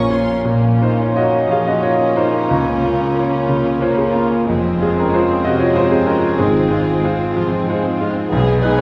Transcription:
Already playing: A#1 A#2 F3 A#3 C#4 F4 A#4 C#5 C#6
0.10 A#3 F4 C#5 C6
0.30 C#4
0.44 A#1 A#2 A#3 C#4 F4 A#4
0.49 F4
0.64 C#4
0.81 A#3 D#4 F4 C5
0.98 C#4 C#5
1.02 F4
1.14 A#3 F4 F#4 C#5 D#5
1.30 C#4
1.48 F3 F4 F5
1.52 G#4
1.66 C#4 F#4 D#5
1.82 A#3 F4 C#5
2.01 C#4
2.16 A#3 D#4 F4 C5
2.33 C#4
2.47 C#2 C#3 A#3 C#4 A#4
2.67 C#4
2.83 A#3 F4
2.99 C#4
3.15 A#3 F4
3.19 C#5
3.32 C#4
3.47 C#3 F4
3.63 C#4
3.79 A#3 F4 C5 C#5
3.91 A#4
3.96 C#4 G#4
4.08 F4 A#4
4.15 A#3
4.27 C#4
4.44 F1 F2 G#3 C4 F4 G#4
4.49 F2 G#3
4.61 C4
4.78 G#3 F4
4.82 C4 G#4
4.95 C4
5.00 C#4 A#4
5.10 G#3
5.14 F4 C5
5.24 C4
5.43 C3 F4 F#4 D#5
5.59 C4 F4 C#5
5.75 G#3 F4 C5
5.91 C4 G#4
6.06 G#3 C#4 F4 A#4
6.22 C4
6.38 G#1 G#2 G#3 C4 G#4
6.56 C4
6.71 G#3 F4
6.86 C4
7.03 G#3 F4 C5
7.18 C4
7.34 F3 F4
7.50 C4
7.66 G#3 F4 C5
7.82 C4
7.98 G#3 F4
8.13 C4
8.29 B1 B2 B3 G#4
8.60 G#3 B3 G#4 B4
8.65 D#4
8.78 C#5

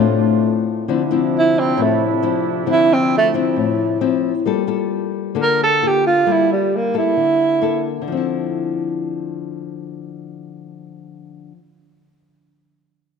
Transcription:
Already playing: A2 C3 A3 C4 D4 F4
0.00 F4
0.87 C3 D3 F3 C4 D4 E4
1.11 F3 C4 E4
1.39 E4
1.59 C4
1.77 A2 F3 C4 E4
1.82 A3
2.23 F3 C4 E4
2.66 D3 F3 C4 E4
2.72 E4
2.93 C4
3.18 A3
3.34 F3 C4 E4
3.56 A2
4.01 F3 C4 E4
4.46 G3 A#3 F4 A4
4.67 A#3 F4 A4
5.35 D3 A#3 F4 A4
5.42 A#4
5.63 A4
5.82 A#3 F4 A4
5.87 G4
6.07 F4
6.26 G3 A#3 F4 A4
6.32 E4
6.53 G3
6.76 A#3
6.94 A#3 A4
6.98 E4
7.17 D3
7.62 A#3 A4
8.02 D3
8.08 F3
8.12 C4
8.17 E4

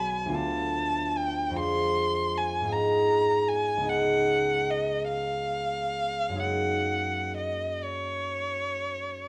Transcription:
Already playing: B1 B3 F#4 G#4 B4 D5
0.00 G#5
0.26 D2 B3 F4
0.32 A4 D5 A5
1.18 G5
1.50 F2 C4 F4
1.56 G#4 D5 C6
2.38 G#5
2.61 G#2 B3 F4
2.67 G#4 D#5
2.73 A#5
3.48 G#5
3.77 C#2 B3 D#4
3.83 G#4 D#5
3.89 F#5
4.71 D#5
5.08 F5
6.29 F#2 A#3
6.34 D#4 G#4 C#5
6.40 F#5
7.37 D#5
7.84 C#5

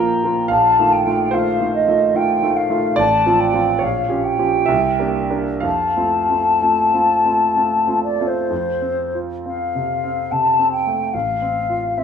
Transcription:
Already playing: F3 A#3 F4 F5 G5 A#5
0.24 F3 A#3 F4
0.48 A#1 F5 A5
0.79 D#3 A3 F4
0.93 G5
1.06 D#3 A3 F4
1.31 D#3 A3 F4 C5 F5
1.60 D#3 A3 F4
1.74 D#5
1.88 D#3 A3 F4
2.14 D#3 A3 F4 G5
2.42 D#3 A3 F4
2.57 F5
2.70 D#3 A3 F4
2.96 A1 D5 A5
3.26 F3 C4 F4
3.40 G5
3.54 F3 C4 F4
3.79 A#1 C#5
3.84 F5
4.09 F3 C#4 G4
4.25 G5
4.39 F3 C#4 G4
4.66 C2 E5
4.99 A#3 D4 G4
5.30 A#3 D4 G4
5.60 F2 F5
5.65 A5
5.96 A3 C4 F4
6.29 A3 C4 F4
6.62 A3 C4 F4
6.93 A3 C4 F4
7.25 A3 C4 F4
7.56 A3 C4 F4
7.87 A3 C4 F4
8.04 D5
8.20 A3 C4 F4
8.27 C5
8.50 F2
8.81 C4
9.15 F4
9.46 C4 F5
9.75 C3
10.04 C4
10.32 C3 A5
10.59 C4
10.72 G5
10.87 A3
11.14 A1 F5
11.42 C4
11.70 F4
11.98 C4 E5

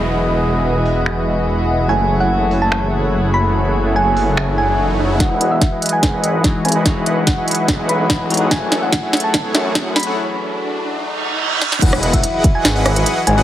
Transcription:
Already playing: E1 E3 F#3 G#3 E4 F#4 G#4 B4 D#5 F#5, downlifter
0.86 open hi-hat
1.06 finger snap
1.87 F#1 F#3 A3 E4 G#4 A4 C#5 F#5 G#5, riser
2.20 F#5
2.51 open hi-hat
2.62 A5
2.72 finger snap
3.34 B5
3.96 G#5
4.17 open hi-hat
4.37 finger snap
4.58 G#5
5.18 E1 E3 F#3 G#3 E4 F#4 G#4 B4 D#5 F#5, kick, snare, closed hi-hat, riser
5.41 E4 G#4 B4 D#5 F#5, closed hi-hat
5.51 E5
5.61 kick, snare, closed hi-hat
5.72 E4 G#4 B4 D#5 F#5
5.82 closed hi-hat
5.86 closed hi-hat
5.89 G#5, closed hi-hat
6.03 G#1, kick, snare, closed hi-hat
6.13 E4 G#4 B4 D#5 F#5
6.24 closed hi-hat
6.43 E3 G#3 D#4 E4 F#4 G#4 B4 D#5 F#5, kick, snare, closed hi-hat
6.65 G#1 G#5, closed hi-hat
6.68 closed hi-hat
6.72 E4 G#4 B4 D#5 F#5, closed hi-hat
6.84 E1 E3 G#3 E4 G#4 B4 D#5 F#5, kick, snare, closed hi-hat
6.88 F#4
7.06 E4 G#4 B4 D#5 F#5, closed hi-hat
7.27 F#5, kick, snare, closed hi-hat
7.38 E4 G#4 B4 D#5 F#5
7.48 closed hi-hat
7.51 closed hi-hat
7.55 closed hi-hat
7.68 B1, kick, snare, closed hi-hat
7.79 E4 G#4 B4 D#5 F#5
7.89 B5, closed hi-hat
8.10 E4 G#4 B4 D#5 F#5, kick, snare, closed hi-hat
8.29 B1 E3 G#3 D#4 F#4, closed hi-hat
8.34 closed hi-hat
8.37 E4 G#4 B4 D#5 F#5, closed hi-hat
8.49 F#1 E3 F#3 A3 E4 G#4 A4 C#5 F#5 G#5, kick, snare, closed hi-hat
8.53 G#5
8.72 E4 G#4 A4 C#5 F#5, snare, closed hi-hat
8.83 F#5
8.92 kick, snare, closed hi-hat
9.03 E4 G#4 A4 C#5 F#5
9.13 snare, closed hi-hat
9.17 closed hi-hat
9.20 A5, closed hi-hat
9.34 kick, snare, closed hi-hat
9.45 E4 G#4 A4 C#5 F#5
9.55 F#2, snare, closed hi-hat
9.74 F#3 A3 E4 G#4 A4 C#5 F#5, kick, snare, closed hi-hat
9.96 B5, snare, closed hi-hat
9.99 closed hi-hat
10.03 E4 G#4 A4 C#5 F#5, closed hi-hat
10.99 reverse cymbal
11.62 snare
11.72 snare
11.82 E1 E3 F#3 E4 F#4 G#4 B4 D#5 F#5, kick, closed hi-hat, crash, impact
11.93 cross-stick
12.03 E4 G#4 B4 D#5 F#5, closed hi-hat
12.13 E5, kick, closed hi-hat
12.23 closed hi-hat
12.34 E4 G#4 B4 D#5 F#5
12.44 kick, closed hi-hat
12.55 G#5
12.65 G#1, snare, closed hi-hat
12.76 E4 G#4 B4 D#5 F#5
12.86 cross-stick, closed hi-hat
12.96 closed hi-hat
13.06 E4 G#4 B4 D#5 F#5, closed hi-hat
13.27 G#1 G#5, closed hi-hat
13.38 E4 G#4 B4 D#5 F#5

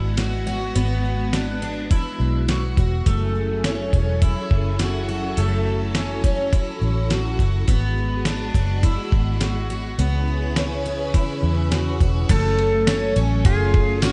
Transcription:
Already playing: G#1 G#3 B3 E4 F#4
0.17 F#4, snare, closed hi-hat
0.47 F#4
0.75 G#1 B3, closed hi-hat
1.33 D4, snare, closed hi-hat
1.62 D4
1.91 E4, kick, closed hi-hat
2.20 B1
2.48 F#4, snare, closed hi-hat
2.77 E1 F#4, kick
3.06 F#1 F#3 A3 C#4 E4 G#4 A4, kick, closed hi-hat
3.64 C#4, snare, closed hi-hat
3.93 E1 C#4, kick
4.22 E4, kick, closed hi-hat
4.51 F#1, kick
4.79 F#4, snare, closed hi-hat
5.09 F#4
5.37 F#1 A3 F#4, closed hi-hat
5.95 C#4, snare, closed hi-hat
6.24 C#4, kick
6.53 E4, kick, closed hi-hat
6.81 A1
7.10 F#4, snare, closed hi-hat
7.39 F#1 F#4, kick
7.68 G#1 G#3 B3 F#4, kick, closed hi-hat
8.25 D4, snare, closed hi-hat
8.54 F#1 D4, kick
8.83 E4, kick, closed hi-hat
9.12 G#1, kick
9.41 F#4, snare, closed hi-hat
9.70 F#4
9.98 C#2 C#3 B3 C#4 E4 G#4 B4, closed hi-hat
10.56 C#4, snare, closed hi-hat
10.86 C#4
11.14 E4, kick, closed hi-hat
11.43 E2
11.72 F#4, snare, closed hi-hat
12.00 E1 F#4, kick
12.29 F#1 F#3 A3 C#4 A4, kick, crash, ride
12.59 ride
12.87 C#4, snare, ride, tambourine
13.16 A1 C#4, ride
13.45 F#1 F4 G#4, kick, ride
13.74 kick, ride
14.02 G#1 C#4 F#4, snare, ride, tambourine

